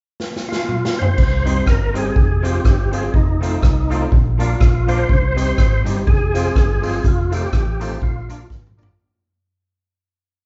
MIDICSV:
0, 0, Header, 1, 7, 480
1, 0, Start_track
1, 0, Tempo, 488599
1, 1157, Time_signature, 4, 2, 24, 8
1, 10267, End_track
2, 0, Start_track
2, 0, Title_t, "Tonewheel organ"
2, 0, Program_c, 0, 16
2, 477, Note_on_c, 0, 65, 91
2, 969, Note_on_c, 0, 72, 98
2, 970, Note_off_c, 0, 65, 0
2, 1433, Note_off_c, 0, 72, 0
2, 1445, Note_on_c, 0, 72, 95
2, 1651, Note_off_c, 0, 72, 0
2, 1653, Note_on_c, 0, 70, 90
2, 1930, Note_off_c, 0, 70, 0
2, 1932, Note_on_c, 0, 68, 93
2, 2402, Note_on_c, 0, 67, 89
2, 2419, Note_off_c, 0, 68, 0
2, 2881, Note_on_c, 0, 68, 79
2, 2895, Note_off_c, 0, 67, 0
2, 3087, Note_on_c, 0, 63, 72
2, 3091, Note_off_c, 0, 68, 0
2, 4006, Note_off_c, 0, 63, 0
2, 4332, Note_on_c, 0, 65, 85
2, 4803, Note_on_c, 0, 72, 111
2, 4819, Note_off_c, 0, 65, 0
2, 5269, Note_off_c, 0, 72, 0
2, 5281, Note_on_c, 0, 72, 105
2, 5725, Note_off_c, 0, 72, 0
2, 5963, Note_on_c, 0, 68, 110
2, 6934, Note_on_c, 0, 65, 90
2, 6948, Note_off_c, 0, 68, 0
2, 7208, Note_off_c, 0, 65, 0
2, 7214, Note_on_c, 0, 67, 97
2, 7846, Note_off_c, 0, 67, 0
2, 7889, Note_on_c, 0, 65, 78
2, 8327, Note_off_c, 0, 65, 0
2, 10267, End_track
3, 0, Start_track
3, 0, Title_t, "Tonewheel organ"
3, 0, Program_c, 1, 16
3, 1426, Note_on_c, 1, 60, 89
3, 1429, Note_on_c, 1, 63, 78
3, 1436, Note_on_c, 1, 67, 81
3, 1437, Note_on_c, 1, 72, 88
3, 1539, Note_off_c, 1, 60, 0
3, 1541, Note_off_c, 1, 63, 0
3, 1544, Note_off_c, 1, 67, 0
3, 1544, Note_off_c, 1, 72, 0
3, 1904, Note_on_c, 1, 60, 84
3, 1907, Note_on_c, 1, 63, 77
3, 1913, Note_on_c, 1, 67, 77
3, 1914, Note_on_c, 1, 72, 95
3, 2018, Note_off_c, 1, 60, 0
3, 2020, Note_off_c, 1, 63, 0
3, 2023, Note_off_c, 1, 67, 0
3, 2024, Note_off_c, 1, 72, 0
3, 2386, Note_on_c, 1, 60, 88
3, 2390, Note_on_c, 1, 65, 83
3, 2395, Note_on_c, 1, 68, 81
3, 2398, Note_on_c, 1, 72, 99
3, 2500, Note_off_c, 1, 60, 0
3, 2502, Note_off_c, 1, 65, 0
3, 2505, Note_off_c, 1, 68, 0
3, 2506, Note_off_c, 1, 72, 0
3, 2867, Note_on_c, 1, 60, 90
3, 2870, Note_on_c, 1, 65, 82
3, 2874, Note_on_c, 1, 68, 76
3, 2880, Note_on_c, 1, 72, 95
3, 2981, Note_off_c, 1, 60, 0
3, 2983, Note_off_c, 1, 65, 0
3, 2985, Note_off_c, 1, 68, 0
3, 2987, Note_off_c, 1, 72, 0
3, 3348, Note_on_c, 1, 63, 86
3, 3353, Note_on_c, 1, 65, 73
3, 3355, Note_on_c, 1, 69, 79
3, 3360, Note_on_c, 1, 72, 89
3, 3462, Note_off_c, 1, 63, 0
3, 3465, Note_off_c, 1, 65, 0
3, 3465, Note_off_c, 1, 69, 0
3, 3468, Note_off_c, 1, 72, 0
3, 3833, Note_on_c, 1, 63, 92
3, 3835, Note_on_c, 1, 65, 80
3, 3838, Note_on_c, 1, 69, 80
3, 3844, Note_on_c, 1, 72, 95
3, 3944, Note_off_c, 1, 63, 0
3, 3946, Note_off_c, 1, 65, 0
3, 3947, Note_off_c, 1, 69, 0
3, 3950, Note_off_c, 1, 72, 0
3, 4310, Note_on_c, 1, 62, 94
3, 4314, Note_on_c, 1, 65, 80
3, 4316, Note_on_c, 1, 70, 79
3, 4321, Note_on_c, 1, 74, 96
3, 4423, Note_off_c, 1, 62, 0
3, 4425, Note_off_c, 1, 65, 0
3, 4426, Note_off_c, 1, 70, 0
3, 4428, Note_off_c, 1, 74, 0
3, 4792, Note_on_c, 1, 62, 88
3, 4796, Note_on_c, 1, 65, 85
3, 4800, Note_on_c, 1, 70, 83
3, 4803, Note_on_c, 1, 74, 103
3, 4903, Note_off_c, 1, 62, 0
3, 4905, Note_off_c, 1, 65, 0
3, 4907, Note_off_c, 1, 70, 0
3, 4909, Note_off_c, 1, 74, 0
3, 5268, Note_on_c, 1, 60, 81
3, 5274, Note_on_c, 1, 63, 82
3, 5276, Note_on_c, 1, 67, 81
3, 5282, Note_on_c, 1, 72, 96
3, 5381, Note_off_c, 1, 60, 0
3, 5384, Note_off_c, 1, 63, 0
3, 5385, Note_off_c, 1, 67, 0
3, 5388, Note_off_c, 1, 72, 0
3, 5753, Note_on_c, 1, 60, 86
3, 5758, Note_on_c, 1, 63, 76
3, 5761, Note_on_c, 1, 67, 85
3, 5764, Note_on_c, 1, 72, 100
3, 5863, Note_off_c, 1, 60, 0
3, 5866, Note_off_c, 1, 63, 0
3, 5867, Note_off_c, 1, 67, 0
3, 5868, Note_off_c, 1, 72, 0
3, 6231, Note_on_c, 1, 60, 94
3, 6233, Note_on_c, 1, 65, 82
3, 6237, Note_on_c, 1, 68, 77
3, 6242, Note_on_c, 1, 72, 100
3, 6341, Note_off_c, 1, 60, 0
3, 6342, Note_off_c, 1, 65, 0
3, 6344, Note_off_c, 1, 68, 0
3, 6347, Note_off_c, 1, 72, 0
3, 6709, Note_on_c, 1, 60, 88
3, 6712, Note_on_c, 1, 65, 77
3, 6714, Note_on_c, 1, 68, 84
3, 6721, Note_on_c, 1, 72, 95
3, 6819, Note_off_c, 1, 60, 0
3, 6821, Note_off_c, 1, 65, 0
3, 6822, Note_off_c, 1, 68, 0
3, 6825, Note_off_c, 1, 72, 0
3, 7182, Note_on_c, 1, 63, 91
3, 7186, Note_on_c, 1, 65, 77
3, 7189, Note_on_c, 1, 69, 78
3, 7192, Note_on_c, 1, 72, 99
3, 7295, Note_off_c, 1, 63, 0
3, 7297, Note_off_c, 1, 65, 0
3, 7299, Note_off_c, 1, 69, 0
3, 7300, Note_off_c, 1, 72, 0
3, 7662, Note_on_c, 1, 63, 84
3, 7668, Note_on_c, 1, 65, 81
3, 7671, Note_on_c, 1, 69, 79
3, 7674, Note_on_c, 1, 72, 97
3, 7775, Note_off_c, 1, 63, 0
3, 7777, Note_off_c, 1, 65, 0
3, 7779, Note_off_c, 1, 69, 0
3, 7781, Note_off_c, 1, 72, 0
3, 8143, Note_on_c, 1, 62, 90
3, 8147, Note_on_c, 1, 65, 83
3, 8150, Note_on_c, 1, 70, 79
3, 8156, Note_on_c, 1, 74, 95
3, 8254, Note_off_c, 1, 62, 0
3, 8256, Note_off_c, 1, 65, 0
3, 8257, Note_off_c, 1, 70, 0
3, 8261, Note_off_c, 1, 74, 0
3, 8618, Note_on_c, 1, 62, 91
3, 8623, Note_on_c, 1, 65, 80
3, 8627, Note_on_c, 1, 70, 78
3, 8632, Note_on_c, 1, 74, 96
3, 8731, Note_off_c, 1, 62, 0
3, 8734, Note_off_c, 1, 65, 0
3, 8736, Note_off_c, 1, 70, 0
3, 8738, Note_off_c, 1, 74, 0
3, 10267, End_track
4, 0, Start_track
4, 0, Title_t, "Hollow-body jazz guitar"
4, 0, Program_c, 2, 26
4, 1423, Note_on_c, 2, 55, 75
4, 1426, Note_on_c, 2, 60, 69
4, 1430, Note_on_c, 2, 63, 81
4, 1442, Note_on_c, 2, 67, 78
4, 1561, Note_off_c, 2, 55, 0
4, 1563, Note_off_c, 2, 60, 0
4, 1565, Note_off_c, 2, 63, 0
4, 1571, Note_off_c, 2, 67, 0
4, 1897, Note_on_c, 2, 55, 77
4, 1905, Note_on_c, 2, 60, 93
4, 1909, Note_on_c, 2, 63, 82
4, 1914, Note_on_c, 2, 67, 88
4, 2039, Note_off_c, 2, 55, 0
4, 2043, Note_off_c, 2, 60, 0
4, 2045, Note_off_c, 2, 63, 0
4, 2048, Note_off_c, 2, 67, 0
4, 2381, Note_on_c, 2, 53, 82
4, 2384, Note_on_c, 2, 56, 89
4, 2389, Note_on_c, 2, 60, 104
4, 2397, Note_on_c, 2, 65, 96
4, 2521, Note_off_c, 2, 53, 0
4, 2523, Note_off_c, 2, 56, 0
4, 2525, Note_off_c, 2, 60, 0
4, 2530, Note_off_c, 2, 65, 0
4, 2861, Note_on_c, 2, 53, 81
4, 2870, Note_on_c, 2, 56, 80
4, 2875, Note_on_c, 2, 60, 81
4, 2880, Note_on_c, 2, 65, 92
4, 3002, Note_off_c, 2, 53, 0
4, 3007, Note_off_c, 2, 56, 0
4, 3009, Note_off_c, 2, 60, 0
4, 3011, Note_off_c, 2, 65, 0
4, 3345, Note_on_c, 2, 51, 79
4, 3359, Note_on_c, 2, 57, 80
4, 3361, Note_on_c, 2, 60, 90
4, 3366, Note_on_c, 2, 65, 83
4, 3484, Note_off_c, 2, 51, 0
4, 3491, Note_off_c, 2, 57, 0
4, 3493, Note_off_c, 2, 60, 0
4, 3495, Note_off_c, 2, 65, 0
4, 3829, Note_on_c, 2, 51, 78
4, 3834, Note_on_c, 2, 57, 94
4, 3841, Note_on_c, 2, 60, 98
4, 3849, Note_on_c, 2, 65, 100
4, 3966, Note_off_c, 2, 51, 0
4, 3969, Note_off_c, 2, 57, 0
4, 3972, Note_off_c, 2, 60, 0
4, 3976, Note_off_c, 2, 65, 0
4, 4301, Note_on_c, 2, 53, 78
4, 4313, Note_on_c, 2, 58, 86
4, 4319, Note_on_c, 2, 65, 85
4, 4320, Note_on_c, 2, 62, 85
4, 4442, Note_off_c, 2, 53, 0
4, 4448, Note_off_c, 2, 58, 0
4, 4451, Note_off_c, 2, 65, 0
4, 4452, Note_off_c, 2, 62, 0
4, 4783, Note_on_c, 2, 53, 81
4, 4789, Note_on_c, 2, 58, 92
4, 4795, Note_on_c, 2, 62, 87
4, 4800, Note_on_c, 2, 65, 99
4, 4923, Note_off_c, 2, 53, 0
4, 4926, Note_off_c, 2, 58, 0
4, 4929, Note_off_c, 2, 62, 0
4, 4931, Note_off_c, 2, 65, 0
4, 5255, Note_on_c, 2, 55, 73
4, 5267, Note_on_c, 2, 60, 76
4, 5270, Note_on_c, 2, 63, 83
4, 5275, Note_on_c, 2, 67, 87
4, 5398, Note_off_c, 2, 55, 0
4, 5404, Note_off_c, 2, 60, 0
4, 5406, Note_off_c, 2, 63, 0
4, 5408, Note_off_c, 2, 67, 0
4, 5738, Note_on_c, 2, 55, 81
4, 5744, Note_on_c, 2, 60, 85
4, 5751, Note_on_c, 2, 63, 89
4, 5758, Note_on_c, 2, 67, 103
4, 5879, Note_off_c, 2, 55, 0
4, 5882, Note_off_c, 2, 60, 0
4, 5886, Note_off_c, 2, 63, 0
4, 5889, Note_off_c, 2, 67, 0
4, 6225, Note_on_c, 2, 53, 79
4, 6230, Note_on_c, 2, 56, 83
4, 6236, Note_on_c, 2, 60, 91
4, 6243, Note_on_c, 2, 65, 97
4, 6362, Note_off_c, 2, 53, 0
4, 6364, Note_off_c, 2, 56, 0
4, 6368, Note_off_c, 2, 60, 0
4, 6371, Note_off_c, 2, 65, 0
4, 6701, Note_on_c, 2, 53, 79
4, 6702, Note_on_c, 2, 56, 79
4, 6713, Note_on_c, 2, 60, 88
4, 6715, Note_on_c, 2, 65, 90
4, 6839, Note_off_c, 2, 53, 0
4, 6839, Note_off_c, 2, 56, 0
4, 6845, Note_off_c, 2, 60, 0
4, 6846, Note_off_c, 2, 65, 0
4, 7180, Note_on_c, 2, 51, 72
4, 7190, Note_on_c, 2, 57, 80
4, 7197, Note_on_c, 2, 60, 73
4, 7201, Note_on_c, 2, 65, 78
4, 7318, Note_off_c, 2, 51, 0
4, 7323, Note_off_c, 2, 57, 0
4, 7326, Note_off_c, 2, 60, 0
4, 7329, Note_off_c, 2, 65, 0
4, 7660, Note_on_c, 2, 51, 80
4, 7666, Note_on_c, 2, 57, 84
4, 7673, Note_on_c, 2, 60, 94
4, 7679, Note_on_c, 2, 65, 91
4, 7797, Note_off_c, 2, 51, 0
4, 7800, Note_off_c, 2, 57, 0
4, 7803, Note_off_c, 2, 60, 0
4, 7807, Note_off_c, 2, 65, 0
4, 8142, Note_on_c, 2, 53, 88
4, 8148, Note_on_c, 2, 58, 96
4, 8158, Note_on_c, 2, 62, 97
4, 8162, Note_on_c, 2, 65, 96
4, 8278, Note_off_c, 2, 53, 0
4, 8281, Note_off_c, 2, 58, 0
4, 8285, Note_off_c, 2, 62, 0
4, 8287, Note_off_c, 2, 65, 0
4, 8621, Note_on_c, 2, 53, 80
4, 8629, Note_on_c, 2, 58, 79
4, 8632, Note_on_c, 2, 62, 93
4, 8638, Note_on_c, 2, 65, 80
4, 8756, Note_off_c, 2, 53, 0
4, 8760, Note_off_c, 2, 58, 0
4, 8762, Note_off_c, 2, 62, 0
4, 8765, Note_off_c, 2, 65, 0
4, 10267, End_track
5, 0, Start_track
5, 0, Title_t, "Fingered electric bass"
5, 0, Program_c, 3, 33
5, 1161, Note_on_c, 3, 36, 100
5, 1569, Note_off_c, 3, 36, 0
5, 1639, Note_on_c, 3, 31, 83
5, 2049, Note_off_c, 3, 31, 0
5, 2122, Note_on_c, 3, 29, 96
5, 2531, Note_off_c, 3, 29, 0
5, 2602, Note_on_c, 3, 31, 95
5, 3011, Note_off_c, 3, 31, 0
5, 3086, Note_on_c, 3, 29, 95
5, 3493, Note_off_c, 3, 29, 0
5, 3566, Note_on_c, 3, 36, 83
5, 3973, Note_off_c, 3, 36, 0
5, 4050, Note_on_c, 3, 34, 102
5, 4455, Note_off_c, 3, 34, 0
5, 4527, Note_on_c, 3, 34, 99
5, 4933, Note_off_c, 3, 34, 0
5, 5004, Note_on_c, 3, 36, 97
5, 5411, Note_off_c, 3, 36, 0
5, 5481, Note_on_c, 3, 32, 86
5, 5715, Note_off_c, 3, 32, 0
5, 5762, Note_on_c, 3, 31, 82
5, 5933, Note_off_c, 3, 31, 0
5, 5972, Note_on_c, 3, 29, 97
5, 6374, Note_off_c, 3, 29, 0
5, 6445, Note_on_c, 3, 31, 97
5, 6849, Note_off_c, 3, 31, 0
5, 6919, Note_on_c, 3, 29, 99
5, 7325, Note_off_c, 3, 29, 0
5, 7396, Note_on_c, 3, 33, 83
5, 7803, Note_off_c, 3, 33, 0
5, 7880, Note_on_c, 3, 34, 100
5, 8285, Note_off_c, 3, 34, 0
5, 8356, Note_on_c, 3, 32, 96
5, 8762, Note_off_c, 3, 32, 0
5, 10267, End_track
6, 0, Start_track
6, 0, Title_t, "Muted hollow-body jazz guitar strokes"
6, 4037, Note_on_c, 9, 29, 45
6, 4135, Note_off_c, 9, 29, 0
6, 7867, Note_on_c, 9, 29, 38
6, 7966, Note_off_c, 9, 29, 0
6, 10267, End_track
7, 0, Start_track
7, 0, Title_t, "Drums"
7, 195, Note_on_c, 9, 38, 57
7, 293, Note_off_c, 9, 38, 0
7, 356, Note_on_c, 9, 38, 58
7, 454, Note_off_c, 9, 38, 0
7, 513, Note_on_c, 9, 38, 79
7, 612, Note_off_c, 9, 38, 0
7, 675, Note_on_c, 9, 45, 75
7, 773, Note_off_c, 9, 45, 0
7, 837, Note_on_c, 9, 38, 97
7, 935, Note_off_c, 9, 38, 0
7, 996, Note_on_c, 9, 43, 90
7, 1095, Note_off_c, 9, 43, 0
7, 1157, Note_on_c, 9, 36, 102
7, 1158, Note_on_c, 9, 49, 83
7, 1255, Note_off_c, 9, 36, 0
7, 1257, Note_off_c, 9, 49, 0
7, 1439, Note_on_c, 9, 42, 91
7, 1537, Note_off_c, 9, 42, 0
7, 1635, Note_on_c, 9, 36, 109
7, 1643, Note_on_c, 9, 37, 118
7, 1734, Note_off_c, 9, 36, 0
7, 1741, Note_off_c, 9, 37, 0
7, 1918, Note_on_c, 9, 42, 91
7, 2017, Note_off_c, 9, 42, 0
7, 2121, Note_on_c, 9, 36, 115
7, 2220, Note_off_c, 9, 36, 0
7, 2403, Note_on_c, 9, 42, 96
7, 2501, Note_off_c, 9, 42, 0
7, 2600, Note_on_c, 9, 36, 120
7, 2607, Note_on_c, 9, 37, 116
7, 2698, Note_off_c, 9, 36, 0
7, 2705, Note_off_c, 9, 37, 0
7, 2877, Note_on_c, 9, 42, 78
7, 2975, Note_off_c, 9, 42, 0
7, 3083, Note_on_c, 9, 36, 106
7, 3181, Note_off_c, 9, 36, 0
7, 3367, Note_on_c, 9, 42, 87
7, 3465, Note_off_c, 9, 42, 0
7, 3561, Note_on_c, 9, 36, 106
7, 3566, Note_on_c, 9, 37, 120
7, 3659, Note_off_c, 9, 36, 0
7, 3664, Note_off_c, 9, 37, 0
7, 3842, Note_on_c, 9, 42, 92
7, 3941, Note_off_c, 9, 42, 0
7, 4047, Note_on_c, 9, 36, 106
7, 4145, Note_off_c, 9, 36, 0
7, 4321, Note_on_c, 9, 42, 92
7, 4419, Note_off_c, 9, 42, 0
7, 4523, Note_on_c, 9, 36, 112
7, 4528, Note_on_c, 9, 37, 113
7, 4622, Note_off_c, 9, 36, 0
7, 4626, Note_off_c, 9, 37, 0
7, 4798, Note_on_c, 9, 42, 75
7, 4896, Note_off_c, 9, 42, 0
7, 5004, Note_on_c, 9, 36, 108
7, 5102, Note_off_c, 9, 36, 0
7, 5280, Note_on_c, 9, 42, 84
7, 5288, Note_on_c, 9, 54, 90
7, 5378, Note_off_c, 9, 42, 0
7, 5387, Note_off_c, 9, 54, 0
7, 5481, Note_on_c, 9, 36, 101
7, 5484, Note_on_c, 9, 37, 118
7, 5579, Note_off_c, 9, 36, 0
7, 5582, Note_off_c, 9, 37, 0
7, 5759, Note_on_c, 9, 54, 70
7, 5763, Note_on_c, 9, 42, 86
7, 5857, Note_off_c, 9, 54, 0
7, 5861, Note_off_c, 9, 42, 0
7, 5966, Note_on_c, 9, 36, 110
7, 6064, Note_off_c, 9, 36, 0
7, 6237, Note_on_c, 9, 54, 87
7, 6240, Note_on_c, 9, 42, 92
7, 6335, Note_off_c, 9, 54, 0
7, 6339, Note_off_c, 9, 42, 0
7, 6440, Note_on_c, 9, 36, 114
7, 6447, Note_on_c, 9, 37, 115
7, 6539, Note_off_c, 9, 36, 0
7, 6545, Note_off_c, 9, 37, 0
7, 6713, Note_on_c, 9, 54, 68
7, 6717, Note_on_c, 9, 46, 47
7, 6811, Note_off_c, 9, 54, 0
7, 6816, Note_off_c, 9, 46, 0
7, 6918, Note_on_c, 9, 36, 102
7, 6918, Note_on_c, 9, 44, 62
7, 7016, Note_off_c, 9, 44, 0
7, 7017, Note_off_c, 9, 36, 0
7, 7193, Note_on_c, 9, 42, 89
7, 7197, Note_on_c, 9, 54, 86
7, 7291, Note_off_c, 9, 42, 0
7, 7295, Note_off_c, 9, 54, 0
7, 7393, Note_on_c, 9, 36, 104
7, 7397, Note_on_c, 9, 37, 116
7, 7491, Note_off_c, 9, 36, 0
7, 7495, Note_off_c, 9, 37, 0
7, 7670, Note_on_c, 9, 42, 89
7, 7673, Note_on_c, 9, 54, 74
7, 7768, Note_off_c, 9, 42, 0
7, 7771, Note_off_c, 9, 54, 0
7, 7876, Note_on_c, 9, 36, 105
7, 7974, Note_off_c, 9, 36, 0
7, 8149, Note_on_c, 9, 54, 88
7, 8153, Note_on_c, 9, 42, 97
7, 8247, Note_off_c, 9, 54, 0
7, 8251, Note_off_c, 9, 42, 0
7, 8352, Note_on_c, 9, 36, 119
7, 8355, Note_on_c, 9, 38, 58
7, 8450, Note_off_c, 9, 36, 0
7, 8453, Note_off_c, 9, 38, 0
7, 8513, Note_on_c, 9, 45, 71
7, 8611, Note_off_c, 9, 45, 0
7, 8629, Note_on_c, 9, 54, 69
7, 8673, Note_on_c, 9, 43, 103
7, 8727, Note_off_c, 9, 54, 0
7, 8771, Note_off_c, 9, 43, 0
7, 10267, End_track
0, 0, End_of_file